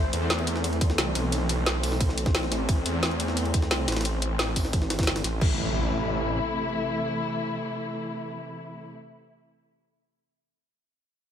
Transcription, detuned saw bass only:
Already playing: A1
0.13 E2
0.98 C2
1.15 B1
2.52 A1
2.69 A1
2.86 E2
3.71 C2
3.88 A1
4.83 G#1
5.10 G1
5.24 A1
5.41 A1

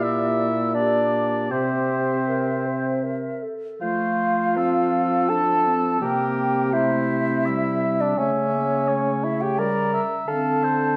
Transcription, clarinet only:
Already playing: G4
0.77 G4
1.53 G4
2.28 A#4
2.66 C5
3.04 A#4
3.43 A4
3.83 A3
4.57 C4
5.29 D4
5.67 C4
6.02 A#3
6.74 A3
7.48 G3
8.19 A3
8.54 A#3
8.89 A3
9.59 G3
10.28 C4

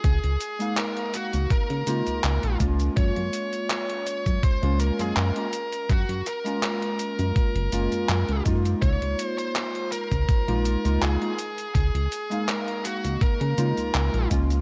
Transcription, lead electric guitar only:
0.05 G#4
0.78 A#4
1.14 F#4
1.51 A#4
2.97 C#5
4.07 C#5
4.44 C5
4.81 A#4
5.00 G#4
5.17 A#4
5.90 F#4
6.27 A#4
8.82 C#5
9.24 C5
9.38 C5
9.92 A#4
11.02 G#4
11.75 G#4
12.48 A#4
12.85 F#4
13.22 A#4

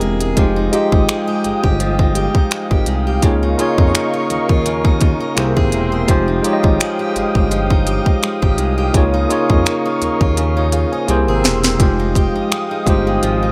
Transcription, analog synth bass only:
0.01 E1
0.37 F1
0.92 G#1
1.45 G1
1.64 G1
2.71 G#1
2.87 C2
3.23 C#2
3.78 F2
4.30 D#2
4.49 D#2
5.37 C2
5.57 G#1
5.73 E1
6.08 F1
6.64 G#1
7.16 G1
7.35 G1
8.42 G#1
8.58 C2
8.94 C#2
9.50 F2
10.02 D#2
10.21 D#2
11.09 C2
11.28 G#1
11.44 E1
11.80 F1
12.35 G1
12.87 G1
13.23 G#1

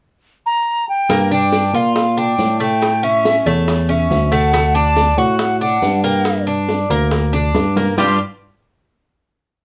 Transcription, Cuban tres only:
1.10 A#3
1.31 D4
1.74 F4
2.17 D4
2.60 A3
3.03 C#4
3.46 A3
3.89 C#4
4.32 A3
4.53 A3
4.75 D4
5.18 F#4
5.61 D4
6.04 A#3
6.47 D4
6.90 A#3
7.33 D4
7.77 A#3
7.98 G3 D4 F4

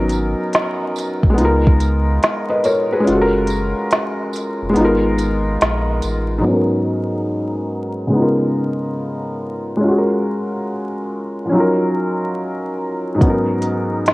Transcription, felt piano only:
Already playing: F#3 B3 C#4 D#4 A#4
1.30 G#3
1.34 B3 D#4
1.41 F4 A#4
2.49 B4 D#5
2.65 A#4 C#5
2.92 G#4 B4
3.00 G#3 C#4
3.07 F4 F#4
3.15 A4
3.21 A#4
4.70 G#3 B3
4.77 D#4 F4
4.85 A#4
6.38 G#2 F#3
6.44 B3 C#4
6.50 D#4 A#4
8.07 C#3 G#3
8.13 B3 D#4
8.19 F4 A#4
9.77 G#3 C#4
9.84 F4
9.88 F#4 G#4
9.98 A#4
11.45 F3 C#4
11.52 F#3 D#4
11.56 F4 A#4
13.15 G#2 F#3
13.21 B3 C#4
13.27 D#4 A#4

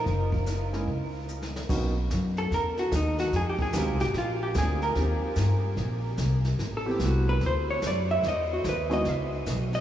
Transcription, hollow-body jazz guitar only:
Already playing: A#4
2.38 A4
2.54 A#4
2.79 F#4
2.96 D#4
3.20 F#4
3.36 G#4
3.49 G4
3.62 G#4
3.77 A#4
4.01 G4
4.18 F4
4.43 G4
4.58 G#4
4.83 A#4
6.77 A4
6.91 G4
7.05 F#4
7.29 B4
7.46 C5
7.71 C#5
7.87 D5
8.11 E5
8.28 D#5
8.53 F#4
8.69 B4
8.93 D#5
9.09 E5
9.75 D#5

